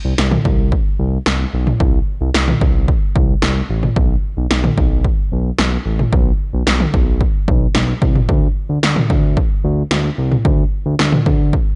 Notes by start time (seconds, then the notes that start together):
0.05 C2
0.18 C2, snare
0.31 mid tom
0.45 C2, kick
0.72 kick
0.99 C2
1.26 C2, snare
1.54 B1
1.67 mid tom
1.80 C2, kick
2.21 C2
2.34 C2, snare
2.48 mid tom
2.61 C2, kick
2.88 kick
3.15 C2, kick
3.42 C2, snare
3.70 A1
3.83 mid tom
3.96 B1, kick
4.37 B1
4.51 B1, snare
4.64 mid tom
4.78 B1, kick
5.05 kick
5.32 B1
5.59 B1, snare
5.86 A1
5.99 mid tom
6.13 B1, kick
6.53 B1
6.67 B1, snare
6.80 mid tom
6.94 B1, kick
7.21 kick
7.48 B1, kick
7.75 B1, snare
8.02 C2, kick
8.15 mid tom
8.29 D2, kick
8.69 D2
8.83 D2, snare
8.96 mid tom
9.10 D2, kick
9.37 kick
9.64 D2
9.91 D2, snare
10.18 C2
10.32 mid tom
10.45 D2, kick
10.86 D2
10.99 D2, snare
11.12 mid tom
11.26 D2, kick
11.53 kick